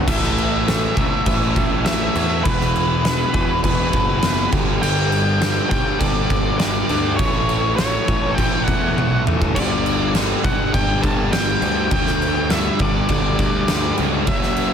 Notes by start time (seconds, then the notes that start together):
0.07 A1 A2 E3 A3 E5, kick, crash
0.23 snare
0.38 crash
0.67 A2 E3 A3, snare, crash
0.96 C#2 A2 E3 A3, kick, crash
1.26 A1 A2 E3 A3, kick, crash
1.56 A1, kick, crash
1.85 A2 E3 A3 E5, snare, crash
2.15 E2 A2 E3 A3, crash
2.44 E1 E2 B2 E3 B4, kick, crash
2.61 snare
2.76 crash
3.04 E2 B2 E3, snare, crash
3.34 E1 E2 B2 E3, kick, crash
3.63 E1 E2 B2 E3 B4, kick, crash
3.93 F#1, kick, crash
4.22 E2 B2 E3, snare, crash
4.52 G1 G2 D3 G3, kick, crash
4.81 G1 G2 D3 G3 G5, crash
5.12 crash
5.41 G2 D3 G3, snare, crash
5.70 B1 G2 D3 G3 G5, kick, crash
5.99 G1 G2 D3 G3 D5, kick, crash
6.30 G1, kick, crash
6.58 G2 D3 G3 D5, snare, crash
6.89 D2 G2 D3 G3, crash
7.17 A1 A2 E3 A3 C#5, kick, crash
7.49 crash
7.76 A2 E3 A3 C#5, snare, crash
8.08 A1 A2 E3 A3, kick, crash
8.35 A1 A2 E3 G5, kick, crash
8.39 A3
8.64 E2 F#5, kick
8.68 crash
8.97 A2 E3 A3, high tom
9.11 B1
9.25 A1 A2 E3 A3, mid tom
9.42 G1, kick
9.55 G1 G2 D3 G3 D5, kick, splash, crash
9.86 crash
10.15 G2 D3 G3, snare, crash
10.44 B1 G2 D3 G3 F#5, kick, crash
10.73 G1 G2 D3 G3 G5, kick, crash
11.03 G1 A5, kick, crash
11.31 G2 D3 G3 G5, snare, crash
11.61 D2 G2 D3 G3, crash
11.91 D2 G2 D3 G3 G5, kick, crash
12.07 snare
12.22 crash
12.50 G2 D3 G3 E5, snare, crash
12.79 G1 G2 D3 G3 D5, kick, crash
13.09 G1 G2 D3 G3, kick, crash
13.39 D2, kick, crash
13.68 G2 D3 G3, snare, crash
13.98 C#2 G2 D3 G3, crash
14.27 F#1 F#2 C#3 F#3 E5, kick, crash
14.43 snare
14.56 crash